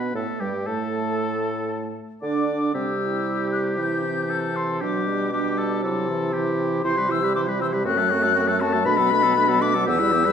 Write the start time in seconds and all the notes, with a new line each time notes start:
Already playing: B2 B3 B4
0.14 A2 A3 A4 A5
0.40 G2 G3 G4 G5
0.66 A2 A3 A4 A5
2.22 D3 D4 D5 D6
2.74 C3 G3 C4 G4 E6
3.00 E4
3.52 F#6
3.77 E3 E4 G6
4.03 C4
4.29 C4 A4
4.55 C6
4.81 B2 F#3 D4 G4 D6
5.07 G3
5.32 G3 D4 G4
5.58 A4
5.83 C3 F#3 E4 A4
6.08 E3
6.33 E3 E4 G4
6.84 C3 E3 E4 C5 C6
6.97 G3 G4 B4
7.09 E3 E4 C5 E6
7.22 G3 G4 B4
7.34 E3 E4 C5 D6
7.47 G3 G4 B4
7.60 E3 E4 C5 E6
7.72 G3 G4 B4
7.85 F#2 A3 C4 F#4 F#6
7.97 F#3 A3 A4
8.10 A3 C4 F#4
8.22 F#3 A3 A4
8.35 A3 C4 F#4
8.48 F#3 A3 A4
8.60 A3 C4 F#4 A5
8.73 F#3 A3 A4
8.85 B2 A3 D4 B4 B5
8.98 F#3 B3 A4
9.11 A3 D4 B4
9.23 F#3 B3 A4
9.36 A3 D4 B4
9.48 F#3 B3 A4
9.61 A3 D4 B4 D6
9.74 F#3 B3 A4
9.86 E2 E3 B3 G4 E6
9.99 G3 E4 B4
10.13 E3 B3 G4
10.25 G3 E4 B4